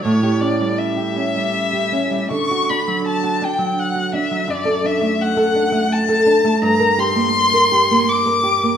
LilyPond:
<<
  \new Staff \with { instrumentName = "Violin" } { \time 3/4 \key d \major \tempo 4 = 83 cis''8 d''8 e''2 | cis'''8 b''8 a''8 g''8 fis''8 e''8 | d''8 e''8 fis''4 a''4 | \key g \dorian bes''8 c'''4. d'''4 | }
  \new Staff \with { instrumentName = "Nylon-string guitar" } { \time 3/4 \key d \major a,16 g'16 cis'16 g8 g'16 cis'16 g8 g'16 cis'16 g16 | d16 fis'16 d'16 fis8 fis'16 d'16 fis8 fis'16 d'16 fis16 | fis,16 a'16 d'16 a8 a'16 d'16 a8 a'16 d'16 a16 | \key g \dorian g,16 bes'16 g'16 bes8 bes'16 g'16 bes8 bes'16 g'16 bes16 | }
>>